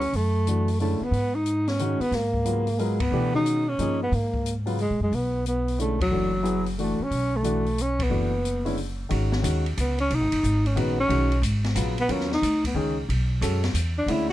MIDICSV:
0, 0, Header, 1, 6, 480
1, 0, Start_track
1, 0, Tempo, 332042
1, 189, Time_signature, 3, 2, 24, 8
1, 20707, End_track
2, 0, Start_track
2, 0, Title_t, "Grand piano"
2, 0, Program_c, 0, 0
2, 681, Note_on_c, 0, 52, 43
2, 689, Note_on_c, 0, 57, 41
2, 699, Note_on_c, 0, 62, 39
2, 700, Note_on_c, 0, 66, 49
2, 952, Note_off_c, 0, 52, 0
2, 957, Note_off_c, 0, 57, 0
2, 961, Note_off_c, 0, 62, 0
2, 962, Note_off_c, 0, 66, 0
2, 1156, Note_on_c, 0, 50, 51
2, 1160, Note_on_c, 0, 56, 46
2, 1161, Note_on_c, 0, 61, 47
2, 1174, Note_on_c, 0, 64, 56
2, 1430, Note_off_c, 0, 50, 0
2, 1432, Note_off_c, 0, 56, 0
2, 1433, Note_off_c, 0, 61, 0
2, 1439, Note_off_c, 0, 64, 0
2, 2597, Note_on_c, 0, 61, 48
2, 2598, Note_on_c, 0, 51, 52
2, 2598, Note_on_c, 0, 56, 48
2, 2613, Note_on_c, 0, 66, 57
2, 2871, Note_off_c, 0, 51, 0
2, 2871, Note_off_c, 0, 56, 0
2, 2871, Note_off_c, 0, 61, 0
2, 2878, Note_off_c, 0, 66, 0
2, 3538, Note_on_c, 0, 54, 44
2, 3543, Note_on_c, 0, 49, 45
2, 3551, Note_on_c, 0, 59, 45
2, 3553, Note_on_c, 0, 65, 53
2, 3821, Note_off_c, 0, 54, 0
2, 3824, Note_off_c, 0, 49, 0
2, 3828, Note_off_c, 0, 59, 0
2, 3829, Note_off_c, 0, 65, 0
2, 4033, Note_on_c, 0, 54, 54
2, 4037, Note_on_c, 0, 59, 46
2, 4048, Note_on_c, 0, 65, 47
2, 4049, Note_on_c, 0, 70, 60
2, 4309, Note_off_c, 0, 54, 0
2, 4311, Note_off_c, 0, 59, 0
2, 4316, Note_off_c, 0, 65, 0
2, 4317, Note_off_c, 0, 70, 0
2, 4511, Note_on_c, 0, 52, 60
2, 4513, Note_on_c, 0, 57, 48
2, 4524, Note_on_c, 0, 62, 50
2, 4531, Note_on_c, 0, 67, 60
2, 4788, Note_off_c, 0, 52, 0
2, 4789, Note_off_c, 0, 57, 0
2, 4795, Note_off_c, 0, 62, 0
2, 4798, Note_off_c, 0, 67, 0
2, 4811, Note_on_c, 0, 56, 52
2, 4816, Note_on_c, 0, 61, 50
2, 4820, Note_on_c, 0, 51, 52
2, 4826, Note_on_c, 0, 66, 56
2, 5234, Note_off_c, 0, 56, 0
2, 5236, Note_off_c, 0, 61, 0
2, 5238, Note_off_c, 0, 51, 0
2, 5241, Note_off_c, 0, 66, 0
2, 5476, Note_on_c, 0, 58, 52
2, 5478, Note_on_c, 0, 53, 57
2, 5489, Note_on_c, 0, 63, 51
2, 5497, Note_on_c, 0, 68, 62
2, 5751, Note_off_c, 0, 58, 0
2, 5752, Note_off_c, 0, 53, 0
2, 5758, Note_off_c, 0, 63, 0
2, 5761, Note_off_c, 0, 68, 0
2, 6733, Note_on_c, 0, 54, 51
2, 6736, Note_on_c, 0, 49, 54
2, 6741, Note_on_c, 0, 59, 53
2, 6743, Note_on_c, 0, 65, 60
2, 6891, Note_off_c, 0, 54, 0
2, 6893, Note_off_c, 0, 49, 0
2, 6895, Note_off_c, 0, 59, 0
2, 6896, Note_off_c, 0, 65, 0
2, 8364, Note_on_c, 0, 50, 43
2, 8364, Note_on_c, 0, 61, 41
2, 8372, Note_on_c, 0, 56, 41
2, 8374, Note_on_c, 0, 64, 48
2, 8636, Note_off_c, 0, 50, 0
2, 8637, Note_off_c, 0, 61, 0
2, 8640, Note_off_c, 0, 56, 0
2, 8642, Note_off_c, 0, 64, 0
2, 8830, Note_on_c, 0, 57, 47
2, 8831, Note_on_c, 0, 52, 51
2, 8847, Note_on_c, 0, 66, 54
2, 8849, Note_on_c, 0, 62, 47
2, 9110, Note_off_c, 0, 57, 0
2, 9111, Note_off_c, 0, 52, 0
2, 9118, Note_off_c, 0, 66, 0
2, 9119, Note_off_c, 0, 62, 0
2, 9290, Note_on_c, 0, 54, 55
2, 9295, Note_on_c, 0, 59, 49
2, 9296, Note_on_c, 0, 64, 49
2, 9312, Note_on_c, 0, 68, 58
2, 9580, Note_off_c, 0, 54, 0
2, 9583, Note_off_c, 0, 59, 0
2, 9583, Note_off_c, 0, 64, 0
2, 9591, Note_off_c, 0, 68, 0
2, 9805, Note_on_c, 0, 57, 47
2, 9811, Note_on_c, 0, 52, 50
2, 9816, Note_on_c, 0, 62, 48
2, 9825, Note_on_c, 0, 66, 55
2, 10078, Note_off_c, 0, 57, 0
2, 10081, Note_off_c, 0, 52, 0
2, 10084, Note_off_c, 0, 62, 0
2, 10088, Note_off_c, 0, 66, 0
2, 10737, Note_on_c, 0, 52, 56
2, 10750, Note_on_c, 0, 57, 53
2, 10758, Note_on_c, 0, 66, 66
2, 10759, Note_on_c, 0, 62, 52
2, 11025, Note_off_c, 0, 52, 0
2, 11031, Note_off_c, 0, 57, 0
2, 11035, Note_off_c, 0, 66, 0
2, 11036, Note_off_c, 0, 62, 0
2, 11700, Note_on_c, 0, 52, 51
2, 11707, Note_on_c, 0, 57, 47
2, 11711, Note_on_c, 0, 62, 43
2, 11716, Note_on_c, 0, 66, 57
2, 11987, Note_off_c, 0, 52, 0
2, 11991, Note_off_c, 0, 57, 0
2, 11993, Note_off_c, 0, 62, 0
2, 11995, Note_off_c, 0, 66, 0
2, 12504, Note_on_c, 0, 56, 50
2, 12506, Note_on_c, 0, 50, 53
2, 12509, Note_on_c, 0, 61, 54
2, 12516, Note_on_c, 0, 64, 63
2, 12661, Note_off_c, 0, 56, 0
2, 12662, Note_off_c, 0, 50, 0
2, 12663, Note_off_c, 0, 61, 0
2, 12667, Note_off_c, 0, 64, 0
2, 13143, Note_on_c, 0, 51, 53
2, 13146, Note_on_c, 0, 56, 48
2, 13162, Note_on_c, 0, 61, 44
2, 13168, Note_on_c, 0, 66, 52
2, 13599, Note_off_c, 0, 51, 0
2, 13610, Note_off_c, 0, 56, 0
2, 13613, Note_off_c, 0, 61, 0
2, 13617, Note_off_c, 0, 66, 0
2, 13620, Note_on_c, 0, 51, 63
2, 13632, Note_on_c, 0, 56, 52
2, 13635, Note_on_c, 0, 61, 55
2, 13638, Note_on_c, 0, 66, 63
2, 13908, Note_off_c, 0, 51, 0
2, 13914, Note_off_c, 0, 56, 0
2, 13915, Note_off_c, 0, 61, 0
2, 13917, Note_off_c, 0, 66, 0
2, 15551, Note_on_c, 0, 51, 59
2, 15552, Note_on_c, 0, 56, 55
2, 15561, Note_on_c, 0, 61, 56
2, 15563, Note_on_c, 0, 66, 70
2, 15834, Note_off_c, 0, 51, 0
2, 15834, Note_off_c, 0, 56, 0
2, 15839, Note_off_c, 0, 61, 0
2, 15840, Note_off_c, 0, 66, 0
2, 16019, Note_on_c, 0, 51, 62
2, 16032, Note_on_c, 0, 56, 61
2, 16035, Note_on_c, 0, 61, 54
2, 16047, Note_on_c, 0, 66, 66
2, 16307, Note_off_c, 0, 51, 0
2, 16314, Note_off_c, 0, 56, 0
2, 16315, Note_off_c, 0, 61, 0
2, 16322, Note_off_c, 0, 66, 0
2, 16989, Note_on_c, 0, 54, 55
2, 16994, Note_on_c, 0, 49, 56
2, 16996, Note_on_c, 0, 59, 54
2, 17001, Note_on_c, 0, 65, 60
2, 17272, Note_off_c, 0, 54, 0
2, 17275, Note_off_c, 0, 49, 0
2, 17276, Note_off_c, 0, 59, 0
2, 17278, Note_off_c, 0, 65, 0
2, 17464, Note_on_c, 0, 54, 58
2, 17475, Note_on_c, 0, 59, 51
2, 17479, Note_on_c, 0, 65, 54
2, 17485, Note_on_c, 0, 70, 60
2, 17750, Note_off_c, 0, 54, 0
2, 17755, Note_off_c, 0, 59, 0
2, 17757, Note_off_c, 0, 65, 0
2, 17760, Note_off_c, 0, 70, 0
2, 18434, Note_on_c, 0, 56, 53
2, 18436, Note_on_c, 0, 51, 67
2, 18438, Note_on_c, 0, 61, 58
2, 18444, Note_on_c, 0, 68, 67
2, 18714, Note_off_c, 0, 56, 0
2, 18715, Note_off_c, 0, 51, 0
2, 18716, Note_off_c, 0, 61, 0
2, 18719, Note_off_c, 0, 68, 0
2, 19391, Note_on_c, 0, 56, 58
2, 19392, Note_on_c, 0, 61, 50
2, 19400, Note_on_c, 0, 66, 51
2, 19408, Note_on_c, 0, 69, 64
2, 19672, Note_off_c, 0, 56, 0
2, 19672, Note_off_c, 0, 61, 0
2, 19676, Note_off_c, 0, 66, 0
2, 19680, Note_off_c, 0, 69, 0
2, 20355, Note_on_c, 0, 50, 59
2, 20364, Note_on_c, 0, 61, 52
2, 20368, Note_on_c, 0, 56, 51
2, 20370, Note_on_c, 0, 64, 64
2, 20632, Note_off_c, 0, 50, 0
2, 20637, Note_off_c, 0, 61, 0
2, 20639, Note_off_c, 0, 56, 0
2, 20640, Note_off_c, 0, 64, 0
2, 20707, End_track
3, 0, Start_track
3, 0, Title_t, "Tenor saxophone"
3, 0, Program_c, 1, 66
3, 0, Note_on_c, 1, 61, 80
3, 233, Note_on_c, 1, 57, 84
3, 255, Note_off_c, 1, 61, 0
3, 1164, Note_off_c, 1, 57, 0
3, 1173, Note_on_c, 1, 57, 75
3, 1497, Note_on_c, 1, 59, 81
3, 1519, Note_off_c, 1, 57, 0
3, 1954, Note_on_c, 1, 63, 88
3, 1976, Note_off_c, 1, 59, 0
3, 2432, Note_on_c, 1, 61, 77
3, 2454, Note_off_c, 1, 63, 0
3, 2910, Note_on_c, 1, 59, 81
3, 2932, Note_off_c, 1, 61, 0
3, 3101, Note_on_c, 1, 58, 73
3, 3122, Note_off_c, 1, 59, 0
3, 4046, Note_on_c, 1, 56, 71
3, 4068, Note_off_c, 1, 58, 0
3, 4354, Note_on_c, 1, 59, 83
3, 4376, Note_off_c, 1, 56, 0
3, 4826, Note_off_c, 1, 59, 0
3, 4844, Note_on_c, 1, 63, 86
3, 5334, Note_on_c, 1, 61, 80
3, 5356, Note_off_c, 1, 63, 0
3, 5797, Note_off_c, 1, 61, 0
3, 5826, Note_on_c, 1, 59, 72
3, 5990, Note_on_c, 1, 58, 79
3, 6012, Note_off_c, 1, 59, 0
3, 6563, Note_off_c, 1, 58, 0
3, 6947, Note_on_c, 1, 56, 75
3, 7217, Note_off_c, 1, 56, 0
3, 7266, Note_on_c, 1, 56, 71
3, 7447, Note_on_c, 1, 59, 69
3, 7469, Note_off_c, 1, 56, 0
3, 7900, Note_off_c, 1, 59, 0
3, 7914, Note_on_c, 1, 59, 73
3, 8342, Note_off_c, 1, 59, 0
3, 8399, Note_on_c, 1, 57, 70
3, 8665, Note_off_c, 1, 57, 0
3, 8700, Note_on_c, 1, 54, 78
3, 9757, Note_off_c, 1, 54, 0
3, 9853, Note_on_c, 1, 57, 70
3, 10164, Note_on_c, 1, 61, 80
3, 10185, Note_off_c, 1, 57, 0
3, 10643, Note_on_c, 1, 57, 80
3, 10664, Note_off_c, 1, 61, 0
3, 11305, Note_on_c, 1, 61, 79
3, 11327, Note_off_c, 1, 57, 0
3, 11614, Note_on_c, 1, 59, 76
3, 11635, Note_off_c, 1, 61, 0
3, 12713, Note_off_c, 1, 59, 0
3, 14167, Note_on_c, 1, 59, 67
3, 14432, Note_off_c, 1, 59, 0
3, 14461, Note_on_c, 1, 61, 89
3, 14665, Note_on_c, 1, 63, 84
3, 14687, Note_off_c, 1, 61, 0
3, 15419, Note_on_c, 1, 61, 70
3, 15441, Note_off_c, 1, 63, 0
3, 15599, Note_on_c, 1, 59, 72
3, 15621, Note_off_c, 1, 61, 0
3, 15888, Note_off_c, 1, 59, 0
3, 15902, Note_on_c, 1, 61, 98
3, 16493, Note_off_c, 1, 61, 0
3, 17348, Note_on_c, 1, 59, 85
3, 17519, Note_on_c, 1, 61, 73
3, 17540, Note_off_c, 1, 59, 0
3, 17808, Note_off_c, 1, 61, 0
3, 17839, Note_on_c, 1, 63, 93
3, 18262, Note_off_c, 1, 63, 0
3, 18304, Note_on_c, 1, 59, 56
3, 18447, Note_off_c, 1, 59, 0
3, 20211, Note_on_c, 1, 62, 79
3, 20394, Note_on_c, 1, 64, 80
3, 20415, Note_off_c, 1, 62, 0
3, 20665, Note_off_c, 1, 64, 0
3, 20707, End_track
4, 0, Start_track
4, 0, Title_t, "Upright bass"
4, 0, Program_c, 2, 32
4, 184, Note_on_c, 2, 42, 75
4, 1397, Note_off_c, 2, 42, 0
4, 1608, Note_on_c, 2, 44, 76
4, 2829, Note_off_c, 2, 44, 0
4, 3056, Note_on_c, 2, 44, 74
4, 4446, Note_off_c, 2, 44, 0
4, 4501, Note_on_c, 2, 47, 72
4, 5408, Note_off_c, 2, 47, 0
4, 5473, Note_on_c, 2, 43, 61
4, 5919, Note_off_c, 2, 43, 0
4, 5951, Note_on_c, 2, 44, 76
4, 7014, Note_off_c, 2, 44, 0
4, 7084, Note_on_c, 2, 46, 49
4, 7221, Note_off_c, 2, 46, 0
4, 7230, Note_on_c, 2, 42, 56
4, 7380, Note_off_c, 2, 42, 0
4, 7398, Note_on_c, 2, 35, 73
4, 8779, Note_off_c, 2, 35, 0
4, 8835, Note_on_c, 2, 30, 69
4, 10047, Note_off_c, 2, 30, 0
4, 10273, Note_on_c, 2, 35, 68
4, 11659, Note_off_c, 2, 35, 0
4, 11706, Note_on_c, 2, 30, 76
4, 13096, Note_off_c, 2, 30, 0
4, 13164, Note_on_c, 2, 32, 69
4, 13629, Note_off_c, 2, 32, 0
4, 13640, Note_on_c, 2, 39, 84
4, 14106, Note_off_c, 2, 39, 0
4, 14129, Note_on_c, 2, 37, 78
4, 14591, Note_off_c, 2, 37, 0
4, 14608, Note_on_c, 2, 35, 70
4, 14752, Note_off_c, 2, 35, 0
4, 14752, Note_on_c, 2, 32, 57
4, 14914, Note_off_c, 2, 32, 0
4, 14923, Note_on_c, 2, 30, 62
4, 15071, Note_off_c, 2, 30, 0
4, 15083, Note_on_c, 2, 32, 85
4, 15548, Note_off_c, 2, 32, 0
4, 15560, Note_on_c, 2, 34, 82
4, 16026, Note_off_c, 2, 34, 0
4, 16033, Note_on_c, 2, 35, 75
4, 16494, Note_off_c, 2, 35, 0
4, 16503, Note_on_c, 2, 32, 87
4, 16977, Note_off_c, 2, 32, 0
4, 16995, Note_on_c, 2, 34, 80
4, 17463, Note_off_c, 2, 34, 0
4, 17476, Note_on_c, 2, 39, 77
4, 17944, Note_off_c, 2, 39, 0
4, 17955, Note_on_c, 2, 38, 85
4, 18408, Note_off_c, 2, 38, 0
4, 18417, Note_on_c, 2, 37, 77
4, 18893, Note_off_c, 2, 37, 0
4, 18918, Note_on_c, 2, 35, 75
4, 19383, Note_off_c, 2, 35, 0
4, 19389, Note_on_c, 2, 42, 93
4, 19849, Note_off_c, 2, 42, 0
4, 19858, Note_on_c, 2, 40, 83
4, 20321, Note_off_c, 2, 40, 0
4, 20330, Note_on_c, 2, 38, 78
4, 20707, Note_off_c, 2, 38, 0
4, 20707, End_track
5, 0, Start_track
5, 0, Title_t, "Muted upright bass strokes"
5, 1450, Note_on_c, 9, 29, 31
5, 1594, Note_off_c, 9, 29, 0
5, 2888, Note_on_c, 9, 29, 34
5, 3032, Note_off_c, 9, 29, 0
5, 10108, Note_on_c, 9, 29, 33
5, 10252, Note_off_c, 9, 29, 0
5, 20707, End_track
6, 0, Start_track
6, 0, Title_t, "Drums"
6, 19, Note_on_c, 9, 46, 35
6, 163, Note_off_c, 9, 46, 0
6, 193, Note_on_c, 9, 46, 37
6, 338, Note_off_c, 9, 46, 0
6, 678, Note_on_c, 9, 42, 44
6, 823, Note_off_c, 9, 42, 0
6, 982, Note_on_c, 9, 46, 33
6, 1127, Note_off_c, 9, 46, 0
6, 1156, Note_on_c, 9, 46, 35
6, 1300, Note_off_c, 9, 46, 0
6, 1639, Note_on_c, 9, 46, 37
6, 1784, Note_off_c, 9, 46, 0
6, 2106, Note_on_c, 9, 42, 47
6, 2251, Note_off_c, 9, 42, 0
6, 2421, Note_on_c, 9, 46, 33
6, 2423, Note_on_c, 9, 38, 40
6, 2566, Note_off_c, 9, 46, 0
6, 2567, Note_off_c, 9, 38, 0
6, 2591, Note_on_c, 9, 42, 41
6, 2736, Note_off_c, 9, 42, 0
6, 2905, Note_on_c, 9, 46, 31
6, 3049, Note_off_c, 9, 46, 0
6, 3066, Note_on_c, 9, 46, 37
6, 3068, Note_on_c, 9, 38, 33
6, 3211, Note_off_c, 9, 46, 0
6, 3212, Note_off_c, 9, 38, 0
6, 3376, Note_on_c, 9, 36, 47
6, 3520, Note_off_c, 9, 36, 0
6, 3549, Note_on_c, 9, 42, 45
6, 3693, Note_off_c, 9, 42, 0
6, 3857, Note_on_c, 9, 46, 34
6, 4001, Note_off_c, 9, 46, 0
6, 4037, Note_on_c, 9, 46, 36
6, 4182, Note_off_c, 9, 46, 0
6, 4338, Note_on_c, 9, 51, 63
6, 4339, Note_on_c, 9, 36, 71
6, 4483, Note_off_c, 9, 51, 0
6, 4484, Note_off_c, 9, 36, 0
6, 4999, Note_on_c, 9, 42, 46
6, 5144, Note_off_c, 9, 42, 0
6, 5476, Note_on_c, 9, 42, 43
6, 5620, Note_off_c, 9, 42, 0
6, 5961, Note_on_c, 9, 46, 36
6, 6106, Note_off_c, 9, 46, 0
6, 6269, Note_on_c, 9, 36, 53
6, 6413, Note_off_c, 9, 36, 0
6, 6444, Note_on_c, 9, 42, 49
6, 6588, Note_off_c, 9, 42, 0
6, 6746, Note_on_c, 9, 46, 34
6, 6890, Note_off_c, 9, 46, 0
6, 6919, Note_on_c, 9, 46, 34
6, 7064, Note_off_c, 9, 46, 0
6, 7410, Note_on_c, 9, 46, 36
6, 7554, Note_off_c, 9, 46, 0
6, 7890, Note_on_c, 9, 42, 46
6, 8035, Note_off_c, 9, 42, 0
6, 8212, Note_on_c, 9, 46, 34
6, 8357, Note_off_c, 9, 46, 0
6, 8379, Note_on_c, 9, 42, 41
6, 8523, Note_off_c, 9, 42, 0
6, 8684, Note_on_c, 9, 36, 76
6, 8692, Note_on_c, 9, 51, 66
6, 8828, Note_off_c, 9, 36, 0
6, 8836, Note_off_c, 9, 51, 0
6, 9329, Note_on_c, 9, 42, 45
6, 9473, Note_off_c, 9, 42, 0
6, 9631, Note_on_c, 9, 46, 37
6, 9776, Note_off_c, 9, 46, 0
6, 9812, Note_on_c, 9, 46, 37
6, 9956, Note_off_c, 9, 46, 0
6, 10285, Note_on_c, 9, 46, 39
6, 10429, Note_off_c, 9, 46, 0
6, 10758, Note_on_c, 9, 42, 45
6, 10903, Note_off_c, 9, 42, 0
6, 11078, Note_on_c, 9, 46, 33
6, 11223, Note_off_c, 9, 46, 0
6, 11248, Note_on_c, 9, 42, 46
6, 11393, Note_off_c, 9, 42, 0
6, 11556, Note_on_c, 9, 36, 71
6, 11560, Note_on_c, 9, 51, 64
6, 11701, Note_off_c, 9, 36, 0
6, 11705, Note_off_c, 9, 51, 0
6, 12215, Note_on_c, 9, 42, 45
6, 12359, Note_off_c, 9, 42, 0
6, 12516, Note_on_c, 9, 46, 35
6, 12661, Note_off_c, 9, 46, 0
6, 12685, Note_on_c, 9, 46, 39
6, 12830, Note_off_c, 9, 46, 0
6, 13162, Note_on_c, 9, 51, 57
6, 13306, Note_off_c, 9, 51, 0
6, 13477, Note_on_c, 9, 38, 58
6, 13621, Note_off_c, 9, 38, 0
6, 13648, Note_on_c, 9, 44, 57
6, 13648, Note_on_c, 9, 51, 64
6, 13792, Note_off_c, 9, 44, 0
6, 13792, Note_off_c, 9, 51, 0
6, 13966, Note_on_c, 9, 51, 42
6, 14111, Note_off_c, 9, 51, 0
6, 14130, Note_on_c, 9, 44, 57
6, 14130, Note_on_c, 9, 51, 63
6, 14275, Note_off_c, 9, 44, 0
6, 14275, Note_off_c, 9, 51, 0
6, 14434, Note_on_c, 9, 51, 41
6, 14579, Note_off_c, 9, 51, 0
6, 14608, Note_on_c, 9, 51, 57
6, 14752, Note_off_c, 9, 51, 0
6, 14918, Note_on_c, 9, 51, 66
6, 15063, Note_off_c, 9, 51, 0
6, 15089, Note_on_c, 9, 44, 51
6, 15233, Note_off_c, 9, 44, 0
6, 15406, Note_on_c, 9, 51, 44
6, 15551, Note_off_c, 9, 51, 0
6, 15569, Note_on_c, 9, 51, 57
6, 15713, Note_off_c, 9, 51, 0
6, 16049, Note_on_c, 9, 51, 58
6, 16194, Note_off_c, 9, 51, 0
6, 16359, Note_on_c, 9, 51, 46
6, 16504, Note_off_c, 9, 51, 0
6, 16525, Note_on_c, 9, 44, 53
6, 16525, Note_on_c, 9, 51, 65
6, 16670, Note_off_c, 9, 44, 0
6, 16670, Note_off_c, 9, 51, 0
6, 16833, Note_on_c, 9, 51, 44
6, 16834, Note_on_c, 9, 38, 48
6, 16978, Note_off_c, 9, 51, 0
6, 16979, Note_off_c, 9, 38, 0
6, 16994, Note_on_c, 9, 44, 52
6, 16994, Note_on_c, 9, 51, 61
6, 17138, Note_off_c, 9, 44, 0
6, 17138, Note_off_c, 9, 51, 0
6, 17315, Note_on_c, 9, 51, 47
6, 17459, Note_off_c, 9, 51, 0
6, 17478, Note_on_c, 9, 51, 59
6, 17622, Note_off_c, 9, 51, 0
6, 17640, Note_on_c, 9, 38, 28
6, 17785, Note_off_c, 9, 38, 0
6, 17805, Note_on_c, 9, 38, 44
6, 17950, Note_off_c, 9, 38, 0
6, 17971, Note_on_c, 9, 44, 49
6, 17971, Note_on_c, 9, 51, 63
6, 18115, Note_off_c, 9, 44, 0
6, 18115, Note_off_c, 9, 51, 0
6, 18277, Note_on_c, 9, 36, 51
6, 18282, Note_on_c, 9, 51, 67
6, 18422, Note_off_c, 9, 36, 0
6, 18427, Note_off_c, 9, 51, 0
6, 18934, Note_on_c, 9, 51, 60
6, 19078, Note_off_c, 9, 51, 0
6, 19403, Note_on_c, 9, 44, 52
6, 19403, Note_on_c, 9, 51, 64
6, 19547, Note_off_c, 9, 44, 0
6, 19547, Note_off_c, 9, 51, 0
6, 19712, Note_on_c, 9, 51, 48
6, 19713, Note_on_c, 9, 38, 53
6, 19856, Note_off_c, 9, 51, 0
6, 19858, Note_off_c, 9, 38, 0
6, 19871, Note_on_c, 9, 44, 61
6, 19871, Note_on_c, 9, 51, 57
6, 20015, Note_off_c, 9, 44, 0
6, 20015, Note_off_c, 9, 51, 0
6, 20357, Note_on_c, 9, 51, 59
6, 20502, Note_off_c, 9, 51, 0
6, 20660, Note_on_c, 9, 38, 46
6, 20707, Note_off_c, 9, 38, 0
6, 20707, End_track
0, 0, End_of_file